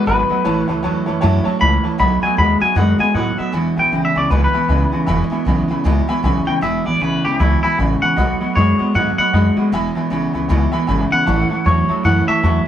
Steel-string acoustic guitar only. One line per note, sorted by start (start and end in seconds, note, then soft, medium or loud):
0.06 0.30 D#3 medium
0.06 0.30 A3 medium
0.06 0.30 B3 medium
0.06 0.28 F#4 medium
0.29 0.45 A3 soft
0.29 0.46 B3 medium
0.29 0.45 F#4 medium
0.45 0.68 A2 medium
0.45 0.69 E3 medium
0.45 0.69 A3 medium
0.45 0.68 C#4 medium
0.45 0.67 E4 medium
0.68 0.82 A3 medium
0.68 0.84 C#4 medium
0.68 0.83 E4 medium
0.83 1.07 E3 medium
0.83 1.07 A3 medium
0.83 1.07 C#4 medium
0.83 1.05 E4 medium
1.06 1.21 A3 medium
1.06 1.22 C#4 medium
1.06 1.22 E4 medium
1.21 1.45 A2 medium
1.21 1.46 E3 medium
1.21 1.46 A3 loud
1.21 1.45 C#4 loud
1.21 1.44 E4 loud
1.45 1.60 A3 medium
1.45 1.61 C#4 medium
1.45 1.60 E4 medium
1.60 1.84 E3 medium
1.60 1.84 A3 medium
1.60 1.84 C#4 medium
1.60 1.82 E4 medium
1.84 1.98 A3 soft
1.84 2.00 C#4 medium
1.84 1.99 E4 medium
1.98 2.22 B2 medium
1.98 2.23 D#3 medium
1.98 2.23 A3 medium
1.98 2.22 B3 medium
1.98 2.21 F#4 medium
2.22 2.37 A3 soft
2.22 2.38 B3 medium
2.22 2.37 F#4 medium
2.37 2.61 D#3 medium
2.37 2.61 A3 medium
2.37 2.61 B3 medium
2.37 2.59 F#4 medium
2.60 2.75 A3 soft
2.60 2.76 B3 medium
2.60 2.76 F#4 medium
2.75 2.99 B2 medium
2.75 2.99 D#3 medium
2.75 3.00 A3 medium
2.75 2.99 B3 medium
2.75 2.97 F#4 medium
2.98 3.15 A3 soft
2.98 3.15 B3 medium
2.98 3.14 F#4 medium
3.15 3.38 D#3 medium
3.15 3.39 A3 medium
3.15 3.38 B3 medium
3.15 3.36 F#4 medium
3.37 3.53 A3 soft
3.37 3.53 B3 medium
3.37 3.53 F#4 soft
3.52 3.76 E2 medium
3.52 3.77 B2 medium
3.52 3.77 E3 medium
3.52 3.77 G#3 medium
3.52 3.76 B3 medium
3.52 3.75 E4 medium
3.76 3.90 E3 soft
3.76 3.91 G#3 medium
3.76 3.92 B3 medium
3.76 3.92 E4 medium
3.91 4.15 E3 medium
3.91 4.16 G#3 medium
3.91 4.15 B3 medium
3.91 4.14 E4 medium
4.15 4.30 E3 soft
4.15 4.30 G#3 soft
4.15 4.31 B3 medium
4.15 4.30 E4 medium
4.30 4.54 E2 medium
4.30 4.54 B2 medium
4.30 4.54 E3 medium
4.30 4.54 G#3 medium
4.30 4.53 B3 medium
4.30 4.52 E4 medium
4.53 4.66 E3 soft
4.53 4.68 G#3 soft
4.53 4.69 B3 medium
4.53 4.69 E4 medium
4.68 4.92 E3 medium
4.68 4.93 G#3 medium
4.68 4.92 B3 medium
4.68 4.91 E4 medium
4.92 5.07 E3 soft
4.92 5.07 G#3 soft
4.92 5.08 B3 soft
4.92 5.07 E4 soft
5.07 5.31 E2 medium
5.07 5.31 B2 medium
5.07 5.31 E3 medium
5.07 5.31 G#3 loud
5.07 5.30 B3 loud
5.07 5.29 E4 loud
5.30 5.44 E3 medium
5.30 5.45 G#3 medium
5.30 5.46 B3 medium
5.30 5.46 E4 medium
5.45 5.69 E3 medium
5.45 5.69 G#3 medium
5.45 5.68 B3 medium
5.45 5.67 E4 medium
5.68 5.84 E3 medium
5.68 5.84 G#3 medium
5.68 5.85 B3 medium
5.68 5.84 E4 medium
5.84 6.08 E2 medium
5.84 6.08 B2 loud
5.84 6.09 E3 loud
5.84 6.09 G#3 medium
5.84 6.08 B3 loud
5.84 6.06 E4 loud
6.07 6.21 E3 soft
6.07 6.23 G#3 medium
6.07 6.24 B3 medium
6.07 6.23 E4 medium
6.23 6.47 E3 medium
6.23 6.47 G#3 medium
6.23 6.46 B3 medium
6.23 6.44 E4 medium
6.46 6.61 E3 soft
6.46 6.62 G#3 medium
6.46 6.62 B3 soft
6.46 6.62 E4 medium
6.61 6.85 E2 medium
6.61 6.86 B2 medium
6.61 6.86 E3 medium
6.61 6.86 G#3 medium
6.61 6.85 B3 medium
6.61 6.84 E4 medium
6.85 6.99 E3 medium
6.85 7.00 G#3 medium
6.85 7.02 B3 soft
6.85 7.01 E4 medium
7.00 7.24 E3 medium
7.00 7.25 G#3 medium
7.00 7.24 B3 medium
7.00 7.23 E4 medium
7.24 7.39 E3 medium
7.24 7.40 G#3 soft
7.24 7.40 B3 medium
7.24 7.40 E4 medium
7.40 7.63 E2 medium
7.40 7.64 B2 medium
7.40 7.64 E3 medium
7.40 7.64 G#3 medium
7.40 7.63 B3 medium
7.40 7.62 E4 medium
7.63 7.77 E3 soft
7.63 7.78 G#3 medium
7.63 7.79 B3 medium
7.63 7.78 E4 soft
7.78 8.02 E3 medium
7.78 8.02 G#3 medium
7.78 8.02 B3 medium
7.78 8.00 E4 medium
8.02 8.17 E3 soft
8.02 8.18 G#3 soft
8.02 8.17 B3 soft
8.02 8.17 E4 medium
8.17 8.41 B2 medium
8.17 8.41 D#3 medium
8.17 8.41 A3 medium
8.17 8.41 B3 medium
8.17 8.39 F#4 medium
8.41 8.55 A3 soft
8.41 8.56 B3 medium
8.41 8.56 F#4 medium
8.55 8.79 D#3 medium
8.55 8.80 A3 medium
8.55 8.80 B3 medium
8.55 8.78 F#4 medium
8.79 8.94 A3 soft
8.79 8.95 B3 soft
8.79 8.94 F#4 medium
8.94 9.18 B2 medium
8.94 9.19 D#3 medium
8.94 9.19 A3 medium
8.94 9.18 B3 medium
8.94 9.17 F#4 medium
9.18 9.33 A3 soft
9.18 9.34 B3 soft
9.18 9.33 F#4 medium
9.33 9.57 D#3 medium
9.33 9.58 A3 medium
9.33 9.57 B3 medium
9.33 9.55 F#4 medium
9.57 9.73 A3 soft
9.57 9.72 B3 soft
9.57 9.72 F#4 medium
9.72 9.96 E2 medium
9.72 9.96 B2 medium
9.72 9.96 E3 medium
9.72 9.96 G#3 loud
9.72 9.95 B3 medium
9.72 9.94 E4 loud
9.95 10.09 E3 soft
9.95 10.10 G#3 medium
9.95 10.11 B3 medium
9.95 10.11 E4 medium
10.10 10.34 E3 medium
10.10 10.35 G#3 medium
10.10 10.34 B3 medium
10.10 10.33 E4 medium
10.34 10.49 E3 medium
10.34 10.49 G#3 medium
10.34 10.50 B3 medium
10.34 10.49 E4 medium
10.49 10.73 E2 medium
10.49 10.73 B2 medium
10.49 10.73 E3 medium
10.49 10.73 G#3 loud
10.49 10.72 B3 medium
10.49 10.71 E4 loud
10.72 10.86 E3 medium
10.72 10.87 G#3 medium
10.72 10.88 B3 medium
10.72 10.88 E4 medium
10.87 11.11 E3 medium
10.87 11.12 G#3 medium
10.87 11.11 B3 medium
10.87 11.09 E4 medium
11.11 11.26 E3 soft
11.11 11.27 G#3 soft
11.11 11.27 B3 medium
11.11 11.26 E4 medium
11.26 11.50 A2 medium
11.26 11.51 E3 medium
11.26 11.51 A3 medium
11.26 11.50 C#4 medium
11.26 11.49 E4 medium
11.50 11.65 A3 medium
11.50 11.66 C#4 medium
11.50 11.65 E4 soft
11.65 11.89 E3 medium
11.65 11.89 A3 medium
11.65 11.89 C#4 medium
11.65 11.87 E4 medium
11.88 12.04 A3 soft
11.88 12.05 C#4 soft
11.88 12.04 E4 medium
12.04 12.28 A2 medium
12.04 12.28 E3 medium
12.04 12.28 A3 medium
12.04 12.28 C#4 medium
12.04 12.26 E4 medium
12.27 12.42 A3 soft
12.27 12.43 C#4 medium
12.27 12.43 E4 medium
12.42 12.66 E3 medium
12.42 12.67 A3 medium
12.42 12.66 C#4 medium
12.42 12.64 E4 medium